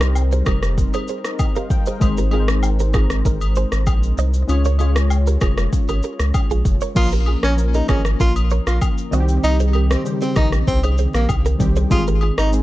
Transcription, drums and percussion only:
0.01 cross-stick, shaker
0.15 low woodblock, shaker
0.32 shaker
0.46 kick, cross-stick, high agogo, shaker
0.63 cross-stick, shaker
0.78 kick, shaker
0.94 high agogo, shaker
1.08 shaker
1.25 cross-stick, shaker
1.39 kick, high agogo, low woodblock, shaker
1.56 shaker
1.70 kick, shaker
1.86 shaker
2.01 kick, high agogo, shaker
2.17 shaker
2.31 high agogo
2.48 cross-stick, shaker
2.63 low woodblock, shaker
2.79 shaker
2.93 kick, cross-stick, high agogo, shaker
3.10 cross-stick, shaker
3.25 kick, shaker
3.41 high agogo, shaker
3.55 shaker
3.72 cross-stick, shaker
3.87 kick, high agogo, low woodblock, shaker
4.03 shaker
4.18 shaker
4.34 shaker
4.49 high agogo, shaker
4.65 shaker
4.79 high agogo, shaker
4.96 cross-stick, shaker
5.10 low woodblock, shaker
5.27 shaker
5.41 kick, cross-stick, high agogo, shaker
5.58 cross-stick, shaker
5.73 kick, shaker
5.88 high agogo, shaker
6.03 shaker
6.20 cross-stick, shaker
6.34 kick, high agogo, low woodblock, shaker
6.51 shaker
6.65 kick, shaker
6.81 shaker
6.96 kick, crash, high agogo, shaker
7.12 shaker
7.26 high agogo
7.43 cross-stick, shaker
7.58 shaker
7.74 shaker
7.88 kick, cross-stick, high agogo, shaker
8.05 cross-stick, shaker
8.20 kick, shaker
8.36 high agogo, shaker
8.50 shaker
8.67 cross-stick, shaker
8.81 kick, high agogo, low woodblock, shaker
8.98 shaker
9.13 shaker
9.28 shaker
9.44 high agogo, shaker
9.60 shaker
9.73 high agogo
9.91 cross-stick, shaker
10.06 shaker
10.22 shaker
10.36 kick, cross-stick, high agogo, shaker
10.52 cross-stick, shaker
10.67 kick, shaker
10.83 high agogo, shaker
10.98 shaker
11.14 cross-stick, shaker
11.29 kick, high agogo, low woodblock, shaker
11.46 shaker
11.60 kick, shaker
11.76 shaker
11.91 kick, high agogo, shaker
12.07 shaker
12.21 high agogo
12.38 cross-stick, shaker
12.53 shaker

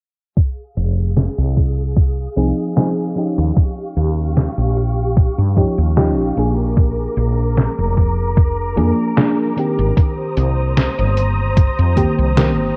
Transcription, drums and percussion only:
0.37 kick, closed hi-hat
0.77 closed hi-hat
1.17 snare, closed hi-hat
1.57 kick, closed hi-hat
1.97 kick, closed hi-hat
2.37 closed hi-hat
2.77 snare, closed hi-hat
3.17 closed hi-hat
3.57 kick, closed hi-hat
3.97 closed hi-hat
4.37 snare, closed hi-hat
4.77 closed hi-hat
5.17 kick, closed hi-hat
5.57 kick, closed hi-hat
5.97 snare, closed hi-hat
6.37 closed hi-hat
6.77 kick, closed hi-hat
7.17 closed hi-hat
7.57 snare, closed hi-hat
7.97 kick, closed hi-hat
8.37 kick, closed hi-hat
8.77 closed hi-hat
9.17 snare, closed hi-hat
9.57 closed hi-hat
9.97 kick, closed hi-hat
10.37 closed hi-hat
10.77 snare, closed hi-hat
11.17 closed hi-hat
11.57 kick, closed hi-hat
11.97 kick, closed hi-hat
12.37 snare, closed hi-hat

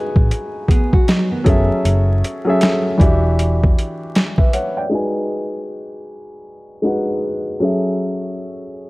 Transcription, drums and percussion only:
0.16 kick
0.31 closed hi-hat
0.68 kick, closed hi-hat
0.93 kick
1.08 snare, closed hi-hat
1.46 kick, closed hi-hat
1.85 closed hi-hat
2.24 closed hi-hat
2.61 snare, closed hi-hat
3.00 kick, closed hi-hat
3.39 closed hi-hat
3.63 kick
3.78 closed hi-hat
4.15 snare, closed hi-hat
4.38 kick
4.53 closed hi-hat

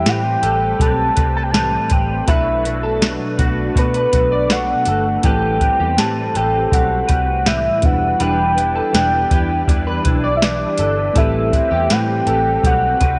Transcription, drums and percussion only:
0.06 snare, closed hi-hat
0.43 closed hi-hat
0.80 kick, closed hi-hat
1.17 kick, closed hi-hat
1.54 snare, closed hi-hat
1.90 kick, closed hi-hat
2.28 kick, closed hi-hat
2.65 closed hi-hat
3.02 snare, closed hi-hat
3.39 kick, closed hi-hat
3.76 kick, closed hi-hat
3.94 closed hi-hat
4.13 kick, closed hi-hat
4.50 snare, closed hi-hat
4.85 closed hi-hat
5.23 kick, closed hi-hat
5.61 kick, closed hi-hat
5.98 snare, closed hi-hat
6.35 closed hi-hat
6.72 kick, closed hi-hat
7.09 kick, closed hi-hat
7.46 snare, closed hi-hat
7.82 kick, closed hi-hat
8.20 closed hi-hat
8.58 closed hi-hat
8.94 snare, closed hi-hat
9.31 kick, closed hi-hat
9.68 kick, closed hi-hat
10.05 kick, closed hi-hat
10.42 snare, closed hi-hat
10.78 closed hi-hat
11.16 kick, closed hi-hat
11.53 kick, closed hi-hat
11.90 snare, closed hi-hat
12.27 closed hi-hat
12.64 kick, closed hi-hat
13.01 kick, closed hi-hat

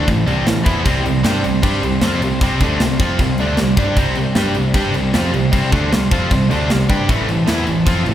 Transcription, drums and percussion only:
0.08 kick, crash
0.27 crash
0.47 snare, crash
0.66 kick, crash
0.86 kick, crash
1.06 crash
1.24 snare, crash
1.44 crash
1.63 kick, crash
1.83 crash
2.01 snare, crash
2.22 crash
2.41 kick, crash
2.61 kick, crash
2.80 snare, crash
3.00 kick, crash
3.19 kick, crash
3.38 crash
3.57 snare, crash
3.77 kick, crash
3.97 kick, crash
4.15 crash
4.35 snare, crash
4.54 crash
4.74 kick, crash
4.94 crash
5.14 snare, crash
5.34 crash
5.53 kick, crash
5.72 kick, crash
5.92 snare, crash
6.11 kick, crash
6.31 kick, crash
6.51 crash
6.70 snare, crash
6.90 kick, crash
7.09 kick, crash
7.29 crash
7.47 snare, crash
7.67 crash
7.86 kick, crash
8.06 crash

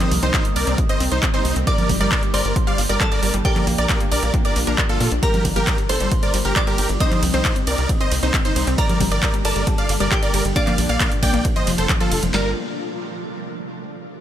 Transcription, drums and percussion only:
0.00 clap, closed hi-hat, high conga
0.12 open hi-hat, high conga
0.23 closed hi-hat
0.34 kick, clap, closed hi-hat
0.45 closed hi-hat
0.56 open hi-hat
0.67 closed hi-hat
0.78 kick, closed hi-hat
0.89 closed hi-hat
1.00 open hi-hat
1.12 closed hi-hat
1.23 kick, clap, closed hi-hat
1.34 closed hi-hat
1.45 open hi-hat
1.56 closed hi-hat
1.67 kick, closed hi-hat
1.78 closed hi-hat, high conga
1.89 kick, open hi-hat, high conga
2.01 closed hi-hat
2.12 kick, clap, closed hi-hat
2.23 closed hi-hat
2.34 open hi-hat
2.45 closed hi-hat
2.56 kick, closed hi-hat
2.67 closed hi-hat
2.78 open hi-hat
2.89 closed hi-hat
3.00 kick, clap, closed hi-hat
3.12 closed hi-hat
3.23 open hi-hat
3.34 closed hi-hat
3.45 kick, closed hi-hat
3.56 clap, closed hi-hat, high conga
3.67 open hi-hat, high conga
3.78 closed hi-hat
3.89 kick, clap, closed hi-hat
4.00 closed hi-hat
4.12 open hi-hat
4.23 closed hi-hat
4.34 kick, closed hi-hat
4.45 closed hi-hat
4.56 open hi-hat
4.67 closed hi-hat
4.78 kick, clap, closed hi-hat
4.89 closed hi-hat
5.00 open hi-hat
5.12 closed hi-hat
5.23 kick, closed hi-hat, ride
5.34 closed hi-hat, high conga
5.45 kick, open hi-hat, ride, high conga
5.56 closed hi-hat
5.67 kick, clap, closed hi-hat, ride
5.78 closed hi-hat
5.89 open hi-hat, ride
6.00 closed hi-hat
6.12 kick, closed hi-hat, ride
6.23 closed hi-hat
6.34 open hi-hat, ride
6.45 closed hi-hat
6.56 kick, clap, closed hi-hat, ride
6.67 closed hi-hat
6.78 open hi-hat, ride
6.89 closed hi-hat
7.00 kick, closed hi-hat, ride
7.12 clap, closed hi-hat, high conga
7.23 open hi-hat, ride, high conga
7.34 closed hi-hat
7.45 kick, clap, closed hi-hat, ride
7.56 closed hi-hat
7.67 open hi-hat, ride
7.78 closed hi-hat
7.89 kick, closed hi-hat, ride
8.01 closed hi-hat
8.12 open hi-hat, ride
8.23 closed hi-hat
8.34 kick, clap, closed hi-hat, ride
8.45 closed hi-hat
8.56 open hi-hat, ride
8.67 closed hi-hat
8.78 kick, closed hi-hat, ride
8.89 closed hi-hat, high conga
9.00 kick, open hi-hat, ride, high conga
9.12 closed hi-hat
9.23 kick, clap, closed hi-hat, ride
9.34 closed hi-hat
9.45 open hi-hat, ride
9.56 closed hi-hat
9.67 kick, closed hi-hat, ride
9.78 closed hi-hat
9.89 open hi-hat, ride
10.00 closed hi-hat
10.12 kick, clap, closed hi-hat, ride
10.23 closed hi-hat
10.34 open hi-hat, ride
10.45 closed hi-hat
10.56 kick, closed hi-hat, ride
10.67 clap, closed hi-hat, high conga
10.78 open hi-hat, ride, high conga
10.89 closed hi-hat
11.00 kick, clap, closed hi-hat, ride
11.12 closed hi-hat
11.23 kick, open hi-hat, ride
11.34 closed hi-hat
11.45 kick, closed hi-hat, ride
11.56 closed hi-hat
11.67 open hi-hat, ride
11.78 closed hi-hat
11.89 kick, clap, closed hi-hat, ride
12.00 closed hi-hat
12.12 open hi-hat, ride
12.23 closed hi-hat
12.34 snare, clap

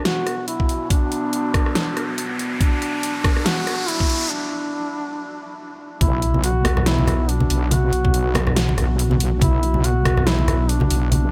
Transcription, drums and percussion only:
0.05 snare, closed hi-hat
0.27 cross-stick, closed hi-hat
0.48 closed hi-hat
0.60 kick
0.69 closed hi-hat
0.90 kick, closed hi-hat
1.12 closed hi-hat
1.33 closed hi-hat
1.54 kick, cross-stick, closed hi-hat
1.66 cross-stick
1.75 snare, closed hi-hat
1.97 cross-stick, closed hi-hat
2.18 closed hi-hat
2.39 closed hi-hat
2.61 kick, closed hi-hat
2.82 closed hi-hat
3.03 closed hi-hat
3.24 kick, cross-stick, closed hi-hat
3.37 cross-stick
3.46 snare, closed hi-hat
3.67 cross-stick, closed hi-hat
3.88 closed hi-hat
4.00 kick
4.10 closed hi-hat
6.01 kick, closed hi-hat, high conga
6.22 closed hi-hat
6.34 high conga
6.44 closed hi-hat
6.65 cross-stick, open hi-hat, muted conga, high conga
6.77 cross-stick, low conga
6.86 snare, closed hi-hat
6.99 high conga
7.07 cross-stick, closed hi-hat, muted conga, low conga
7.29 closed hi-hat
7.40 muted conga, high conga
7.50 open hi-hat
7.71 closed hi-hat, high conga
7.93 closed hi-hat
8.05 kick, high conga
8.14 closed hi-hat
8.35 cross-stick, open hi-hat, muted conga, high conga
8.47 cross-stick, low conga
8.56 snare, closed hi-hat
8.68 muted conga, high conga
8.78 cross-stick, closed hi-hat, low conga
8.99 closed hi-hat
9.11 high conga
9.20 open hi-hat
9.41 kick, closed hi-hat, high conga
9.63 closed hi-hat
9.74 high conga
9.84 closed hi-hat
10.05 cross-stick, open hi-hat, muted conga, high conga
10.17 cross-stick, low conga
10.27 snare, closed hi-hat
10.39 high conga
10.48 cross-stick, closed hi-hat, muted conga, low conga
10.69 closed hi-hat
10.80 muted conga, high conga
10.90 open hi-hat
11.12 closed hi-hat, high conga

